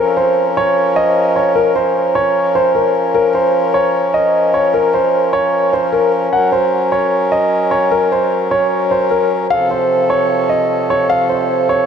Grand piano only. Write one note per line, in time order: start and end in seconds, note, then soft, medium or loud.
0.00 0.12 A#4 medium
0.17 0.54 C5 medium
0.57 0.94 C#5 medium
0.96 1.34 D#5 medium
1.36 1.51 C#5 medium
1.55 1.71 A#4 medium
1.75 2.13 C5 medium
2.15 2.53 C#5 medium
2.55 2.70 C5 medium
2.75 2.90 A#4 medium
3.15 3.30 A#4 medium
3.35 3.72 C5 medium
3.74 4.12 C#5 medium
4.14 4.51 D#5 medium
4.54 4.69 C#5 medium
4.74 4.89 A#4 medium
4.94 5.31 C5 medium
5.33 5.71 C#5 medium
5.73 5.88 C5 medium
5.93 6.08 A#4 medium
6.33 6.48 F#5 medium
6.52 6.90 C5 medium
6.92 7.29 C#5 medium
7.32 7.69 D#5 medium
7.71 7.86 C#5 medium
7.91 8.06 A#4 medium
8.12 8.49 C5 medium
8.51 8.89 C#5 medium
8.91 9.06 C5 medium
9.11 9.26 A#4 medium
9.50 9.65 F5 medium
9.71 10.08 C5 medium
10.10 10.47 C#5 medium
10.49 10.87 D#5 medium
10.90 11.05 C#5 medium
11.10 11.24 F5 loud
11.29 11.67 C5 medium
11.69 11.86 C#5 medium